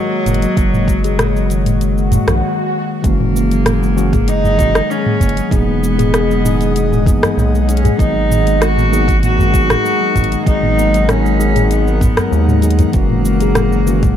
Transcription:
Already playing: F#3 F#4 A#4 C#5 D#5
0.11 A#3
0.26 F#1 A#3, closed hi-hat, mid tom, shaker
0.34 closed hi-hat
0.42 F#3, closed hi-hat, shaker
0.57 F#1 A#3, kick, closed hi-hat, shaker
0.73 G#3, mid tom, shaker
0.88 G#3, kick, closed hi-hat, shaker
1.04 G#4, closed hi-hat, shaker
1.19 G#3, cross-stick, closed hi-hat, mid tom, shaker
1.36 F#3, shaker
1.50 D#3, closed hi-hat, shaker
1.66 G#3, closed hi-hat, mid tom, shaker
1.80 G#3, closed hi-hat, swell, shaker
1.97 A#3, shaker
2.11 A#3, closed hi-hat, mid tom, udu, shaker
2.27 A#1 D#3, cross-stick, closed hi-hat, udu, shaker
3.02 F#1 E3 G#3 A#3 C#4, kick, closed hi-hat, shaker
3.06 F#4
3.20 A#3, mid tom
3.28 G#4
3.36 A#3, shaker
3.51 F#3, closed hi-hat, shaker
3.57 F#5
3.66 A#3, cross-stick, closed hi-hat, mid tom, shaker
3.82 G#3, shaker
3.95 E3 G#3 A#3 C#4 F#4, shaker
4.13 G#4, kick, closed hi-hat, mid tom, shaker
4.28 G#3 D#4, closed hi-hat, shaker
4.44 F#3, udu, shaker
4.58 D#3 E3 A#3 C#4 F#4, kick, closed hi-hat, mid tom, shaker
4.75 G#3, cross-stick, closed hi-hat, shaker
4.90 G#3 C#4, shaker
5.06 A#3, mid tom
5.20 F#1 A#3, kick, closed hi-hat, udu, shaker
5.29 closed hi-hat
5.37 F#3, closed hi-hat, shaker
5.49 E1 E3 A#3 B3 D#4, kick, closed hi-hat, mid tom, shaker
5.53 G#4
5.68 G#3 D#5
5.82 G#3, shaker
5.98 G#4, closed hi-hat, mid tom, shaker
6.13 G#3, cross-stick, closed hi-hat, shaker
6.30 F#3, shaker
6.44 D#3 D#4 G#4, mid tom, shaker
6.61 G#3, closed hi-hat, shaker
6.75 G#3, closed hi-hat, shaker
6.91 B3, mid tom, shaker
7.05 E3 A#3 B3 D#4 G#4, kick, closed hi-hat, udu, shaker
7.23 F#3, cross-stick, closed hi-hat, udu, shaker
7.37 B1 A#3, mid tom, shaker
7.53 G#3, shaker
7.61 D#4
7.68 G#3 C#4, closed hi-hat, shaker
7.77 closed hi-hat
7.83 G#4, closed hi-hat, mid tom, udu, shaker
7.97 G#1 F#3 G#3 B3 D#4 G#4, kick, closed hi-hat, shaker
8.11 D#4
8.16 F#3
8.30 D#3, mid tom, shaker
8.46 G#3 A#4, closed hi-hat, shaker
8.61 G#3 F#4, cross-stick, closed hi-hat, shaker
8.78 B3, mid tom, shaker
8.91 F#3 A#3 B3 D#4 G#4, shaker
9.08 F#3, kick, closed hi-hat, shaker
9.23 A#3 F#4, closed hi-hat, mid tom, shaker
9.39 G#3, udu, shaker
9.53 F#3 B3 D#4 G#4, kick, closed hi-hat, shaker
9.70 G#4, cross-stick, closed hi-hat, mid tom, shaker
9.85 G#3, shaker
10.01 F#3
10.15 G#1 D#3, kick, closed hi-hat, mid tom, udu, shaker
10.24 closed hi-hat
10.32 G#3, closed hi-hat, shaker
10.45 G#1 F#3 G#3 D#4 G#4, kick, closed hi-hat, shaker
10.63 B3, mid tom
10.77 A#3, shaker
10.93 F#3, closed hi-hat, shaker
11.08 A#3 C#4, cross-stick, closed hi-hat, mid tom, shaker
11.24 G#3, shaker
11.38 F#3 G#3 D#4 G#4, shaker
11.55 G#4, closed hi-hat, mid tom, shaker
11.70 G#3 B3, closed hi-hat, shaker
11.86 F#3, shaker
12.00 B3, kick, closed hi-hat, mid tom, udu, shaker
12.16 F#3 B3 D#4 A#4, cross-stick, closed hi-hat, udu, shaker
12.32 D#2 G#3, shaker
12.48 G#3, mid tom, shaker
12.62 D#3 F#3 B3 D#4 G#4, closed hi-hat, shaker
12.70 closed hi-hat
12.79 D#4, closed hi-hat, udu, shaker
12.87 B3
12.92 F#1 E3 F#3 A#3 C#4, kick, closed hi-hat, shaker
12.96 F#4
13.10 G#3, mid tom
13.25 G#3, shaker
13.40 G#4, closed hi-hat, shaker
13.55 G#3, cross-stick, closed hi-hat, mid tom, shaker
13.72 F#3, shaker
13.86 D#3 E3 A#3 C#4 F#4, shaker
14.03 G#3, kick, closed hi-hat, mid tom, shaker

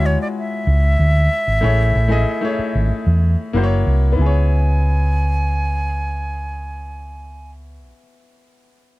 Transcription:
Already playing: D2 G#3 E4 F4 F#4 C#5
0.06 C#5
0.22 D5
0.38 E5
0.67 C#2
0.99 D2
1.47 G#1
1.61 A1 A3 E4 G#4 C#5
1.95 A1
2.08 A3 E4 G#4 D#5
2.41 A3 E4 G#4 C#5
2.59 muted fingered electric bass stroke
2.75 G#1
2.91 muted fingered electric bass stroke
3.06 E2
3.53 F#1 A#3 E4 F#4 C5
3.64 C#5
3.86 C2
4.12 B3
4.17 C#2 E4 G#5
4.22 G#4
4.26 C#5

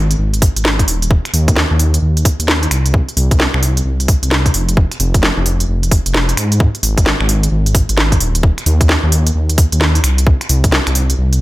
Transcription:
Already playing: G#1
0.11 closed hi-hat
0.19 G#1
0.34 closed hi-hat
0.42 kick, open hi-hat
0.56 G#1, closed hi-hat
0.65 snare
0.79 kick, closed hi-hat
0.88 D#1, open hi-hat
1.02 closed hi-hat
1.11 kick
1.25 finger snap, closed hi-hat
1.34 D#2, open hi-hat
1.48 kick, closed hi-hat
1.56 snare
1.71 D#2
1.79 open hi-hat
1.94 closed hi-hat
2.02 D#2
2.17 closed hi-hat
2.25 kick, open hi-hat
2.40 D#2, closed hi-hat
2.48 snare
2.63 closed hi-hat
2.71 C2, finger snap, open hi-hat
2.86 closed hi-hat
2.94 kick
3.09 closed hi-hat
3.17 C2, open hi-hat
3.31 kick, closed hi-hat
3.40 snare
3.54 C2, finger snap
3.63 open hi-hat
3.77 closed hi-hat
3.85 C2
4.00 closed hi-hat
4.08 kick, open hi-hat
4.23 C2, closed hi-hat
4.31 snare
4.46 kick, closed hi-hat
4.54 F1, open hi-hat
4.69 closed hi-hat
4.77 kick
4.92 finger snap, closed hi-hat
5.00 F1, open hi-hat
5.14 kick, closed hi-hat
5.23 snare
5.37 F1
5.46 open hi-hat
5.60 closed hi-hat
5.69 F1
5.83 closed hi-hat
5.91 kick, open hi-hat
6.06 F1, closed hi-hat
6.14 snare
6.29 closed hi-hat
6.37 G#2, finger snap, open hi-hat
6.52 closed hi-hat
6.60 kick
6.75 closed hi-hat
6.83 G#1, open hi-hat
6.98 kick, closed hi-hat
7.06 snare
7.21 G#1, finger snap
7.29 open hi-hat
7.43 closed hi-hat
7.52 G#1
7.66 closed hi-hat
7.75 kick, open hi-hat
7.89 G#1, closed hi-hat
7.98 snare
8.12 kick, closed hi-hat
8.20 D#1, open hi-hat
8.35 closed hi-hat
8.43 kick
8.58 finger snap, closed hi-hat
8.66 D#2, open hi-hat
8.81 kick, closed hi-hat
8.89 snare
9.04 D#2
9.12 open hi-hat
9.27 closed hi-hat
9.35 D#2
9.49 closed hi-hat
9.58 kick, open hi-hat
9.72 D#2, closed hi-hat
9.81 snare
9.95 closed hi-hat
10.04 C2, finger snap, open hi-hat
10.18 closed hi-hat
10.27 kick
10.41 finger snap, closed hi-hat
10.49 C2, open hi-hat
10.64 kick, closed hi-hat
10.72 snare
10.87 C2, finger snap, closed hi-hat
10.95 open hi-hat
11.10 closed hi-hat
11.18 C2
11.33 closed hi-hat

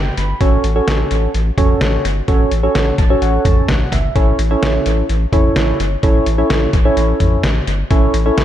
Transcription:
Already playing: G1 G5
0.17 G1 B5, closed hi-hat
0.41 A1 C#4 F#4 A4 C#5, kick, closed hi-hat
0.64 A1, closed hi-hat
0.76 C#4 F#4 A4 C#5
0.88 A1, snare, closed hi-hat
1.11 A1, closed hi-hat
1.34 A1, closed hi-hat
1.58 A1 C#4 F#4 A4 C#5, kick, closed hi-hat, mid tom
1.81 A1, snare, closed hi-hat
2.05 G1, closed hi-hat
2.28 A1 C#4 F#4 A4 C#5, kick, closed hi-hat
2.51 A1, closed hi-hat
2.63 C#4 F#4 A4 C#5
2.75 A1, snare, closed hi-hat
2.98 A1 A5, kick, closed hi-hat
3.10 C#4 F#4 A4 C#5
3.22 A1 F#5, closed hi-hat
3.45 A1 A5, kick, closed hi-hat, mid tom
3.69 A1 F#5, snare, closed hi-hat, mid tom
3.92 G1 E5, closed hi-hat, mid tom
4.16 A1 C#4 E4 A4 C#5, kick, closed hi-hat
4.39 A1, closed hi-hat
4.51 C#4 E4 A4 C#5
4.62 A1, snare, closed hi-hat
4.86 A1, closed hi-hat
5.09 A1, closed hi-hat
5.33 A1 C#4 E4 A4 C#5, kick, closed hi-hat, mid tom
5.56 A1, snare, closed hi-hat
5.80 G1, closed hi-hat
6.03 A1 C#4 E4 A4 C#5, kick, closed hi-hat
6.26 A1, closed hi-hat
6.38 C#4 E4 A4 C#5
6.50 A1, snare, closed hi-hat
6.73 A1, kick, closed hi-hat
6.85 C#4 E4 A4 C#5
6.97 A1, closed hi-hat
7.20 A1, closed hi-hat, mid tom
7.44 A1, snare, closed hi-hat
7.67 G1, closed hi-hat
7.91 A1 C#4 E4 A4 C#5, kick, closed hi-hat
8.14 A1, closed hi-hat
8.26 C#4 E4 A4 C#5
8.37 A1, snare, closed hi-hat

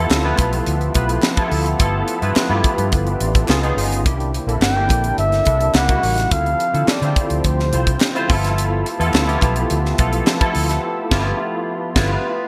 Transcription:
Already playing: F3 A3 B3 E4 F4 G4 A4
0.10 D2, snare, clap
0.24 B3 E4 F4 B4
0.39 B1, kick, clap, closed hi-hat
0.53 closed hi-hat
0.66 D2, closed hi-hat
0.81 closed hi-hat
0.94 B1 B3 E4 F4 B4, kick, closed hi-hat
1.09 closed hi-hat
1.23 snare, clap
1.37 B3 E4 F4 A4, kick, closed hi-hat
1.51 D2, open hi-hat
1.66 closed hi-hat
1.79 G1 B3 E4 F4 A4, kick, closed hi-hat
2.08 closed hi-hat
2.22 G2 B3 E4 F4 B4, closed hi-hat
2.36 muted fingered electric bass stroke, snare, clap
2.49 G2 B3 E4 F4 G4
2.64 kick, closed hi-hat
2.78 G2, closed hi-hat
2.92 G1 D4 B4, kick, closed hi-hat
3.07 G4 E5, closed hi-hat
3.20 A1 F4 D5, closed hi-hat
3.35 A4, kick, closed hi-hat
3.48 C#2 D#3 B3 C#4 D#4 F4 G#4, snare, clap
3.62 B3 D#4 F4 G#4, closed hi-hat
3.77 G1, open hi-hat
3.92 closed hi-hat
4.05 C2 D3 A#3 C4 D4 E4 G4, kick, closed hi-hat
4.20 closed hi-hat
4.34 closed hi-hat
4.47 A#1 A#3 D4 E4 A4, closed hi-hat
4.61 G1 G5, snare, clap
4.75 A#3 D4 E4 G4
4.90 A#1, kick, clap, closed hi-hat
5.04 closed hi-hat
5.18 G1 E5, closed hi-hat
5.32 snare, closed hi-hat
5.45 C2 A#3 D4 E4 A4, kick, closed hi-hat
5.61 closed hi-hat
5.74 C#2 C#3 G3 A#3 D#4 E4 G4 F#5, snare, clap
5.88 A#3 D#4 E4 F#4, kick, closed hi-hat
6.03 A1, open hi-hat
6.18 snare, closed hi-hat
6.31 D2 D3 F3 C4 E4 F4 A4 F5, kick, closed hi-hat
6.46 closed hi-hat
6.60 closed hi-hat
6.73 D3 C4 E4 F4 A4, closed hi-hat
6.87 D5, muted fingered electric bass stroke, snare, clap
7.02 D3 C4 E4 F4 C5, closed hi-hat
7.16 kick, closed hi-hat
7.30 D2, closed hi-hat
7.39 D5
7.44 D2 C5, kick, closed hi-hat
7.59 snare
7.72 C2 C4 E4 F4 C5, closed hi-hat
7.87 kick, closed hi-hat
8.00 snare, clap
8.15 C4 E4 F4 C5, closed hi-hat
8.28 G1 F3 A3 B3 E4 F4 G4 A4, kick, open hi-hat
8.44 snare, closed hi-hat
8.58 closed hi-hat
8.86 closed hi-hat
8.99 E2 B3 E4 F4 A4, closed hi-hat
9.14 D2, snare, clap
9.27 B3 E4 F4 G4, closed hi-hat
9.42 B1, kick, clap, closed hi-hat
9.56 closed hi-hat
9.70 D2, closed hi-hat
9.85 snare
9.98 B1 B3 E4 F4 A4, kick, closed hi-hat
10.13 closed hi-hat
10.27 snare, clap
10.40 B3 E4 F4 A4, kick, closed hi-hat
10.55 D2, open hi-hat
10.69 snare, closed hi-hat
11.11 G1 B3 E4 F4 G4, kick, snare, crash
11.95 G1 B3 E4 F4 B4, kick, snare, crash

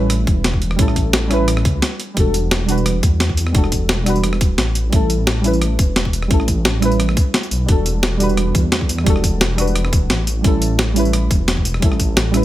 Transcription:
Already playing: A1 G3 C#4 E4 A4 B4
0.10 cross-stick, closed hi-hat
0.27 E1, kick, closed hi-hat
0.44 snare, closed hi-hat
0.54 kick
0.62 closed hi-hat
0.71 cross-stick
0.76 A1 G3 C#4 E4, kick, closed hi-hat
0.82 A4
0.88 cross-stick
0.96 kick, closed hi-hat
1.13 snare, closed hi-hat
1.28 A1 G3 C#4 E4, cross-stick, closed hi-hat
1.33 B4
1.48 cross-stick, closed hi-hat
1.57 cross-stick
1.65 C#2, kick, closed hi-hat
1.82 snare, closed hi-hat
2.00 closed hi-hat
2.14 E1 G3 D4 F#4, kick, closed hi-hat
2.20 A4
2.34 closed hi-hat, tambourine
2.51 snare, closed hi-hat
2.66 G3 D4 F#4, closed hi-hat, tambourine
2.71 B4
2.78 tambourine
2.86 cross-stick, closed hi-hat
3.03 E2, kick, closed hi-hat, tambourine
3.20 snare, closed hi-hat
3.29 kick
3.37 closed hi-hat, tambourine
3.47 cross-stick
3.52 E1 G3 D4 F#4, kick, closed hi-hat
3.58 A4
3.64 cross-stick
3.72 kick, closed hi-hat, tambourine
3.89 snare, closed hi-hat
4.04 E1 G3 D4 F#4, cross-stick, closed hi-hat, tambourine
4.09 B4
4.16 tambourine
4.24 cross-stick, closed hi-hat
4.33 cross-stick
4.41 D1, kick, closed hi-hat, tambourine
4.58 A1, snare, closed hi-hat
4.75 closed hi-hat, tambourine
4.90 A1 G3 C#4 E4, kick, closed hi-hat
4.96 A4
5.10 closed hi-hat, tambourine
5.27 snare, closed hi-hat
5.41 G3 C#4 E4, closed hi-hat, tambourine
5.47 B4
5.53 tambourine
5.62 cross-stick, closed hi-hat
5.79 E1, kick, closed hi-hat, tambourine
5.96 snare, closed hi-hat
6.05 kick
6.13 closed hi-hat, tambourine
6.22 cross-stick
6.28 A1 G3 C#4 E4, kick, closed hi-hat
6.33 A4
6.40 cross-stick
6.48 kick, closed hi-hat, tambourine
6.65 snare, closed hi-hat
6.79 A1 G3 C#4 E4, cross-stick, closed hi-hat, tambourine
6.85 B4
6.92 tambourine
7.00 cross-stick, closed hi-hat
7.09 cross-stick
7.17 kick, closed hi-hat, tambourine
7.34 snare, closed hi-hat
7.43 tambourine
7.51 B1, closed hi-hat, tambourine
7.66 E1 G3 D4 F#4, kick, closed hi-hat
7.71 A4
7.86 closed hi-hat, tambourine
8.03 snare, closed hi-hat
8.17 G3 D4 F#4, closed hi-hat, tambourine
8.23 B4
8.29 tambourine
8.37 cross-stick, closed hi-hat
8.55 E2, kick, closed hi-hat, tambourine
8.72 snare, closed hi-hat
8.81 kick
8.89 closed hi-hat, tambourine
8.98 cross-stick
9.04 E1 G3 D4 F#4, kick, closed hi-hat
9.09 A4
9.16 cross-stick
9.24 kick, closed hi-hat, tambourine
9.41 snare, closed hi-hat
9.55 E1 G3 D4 F#4, cross-stick, closed hi-hat, tambourine
9.61 B4
9.67 tambourine
9.76 cross-stick, closed hi-hat
9.85 cross-stick
9.93 D1, kick, closed hi-hat, tambourine
10.10 A1, snare, closed hi-hat
10.27 closed hi-hat, tambourine
10.42 A1 G3 C#4 E4, kick, closed hi-hat
10.47 A4
10.62 closed hi-hat, tambourine
10.79 snare, closed hi-hat
10.93 G3 C#4 E4, closed hi-hat, tambourine
10.99 B4
11.05 tambourine
11.13 cross-stick, closed hi-hat
11.31 E1, kick, closed hi-hat, tambourine
11.48 snare, closed hi-hat
11.57 kick
11.65 closed hi-hat, tambourine
11.74 cross-stick
11.80 A1 G3 C#4 E4, kick, closed hi-hat
11.85 A4
11.92 cross-stick
12.00 kick, closed hi-hat, tambourine
12.17 snare, closed hi-hat
12.31 A1 G3 C#4 E4, cross-stick, closed hi-hat, tambourine
12.37 B4

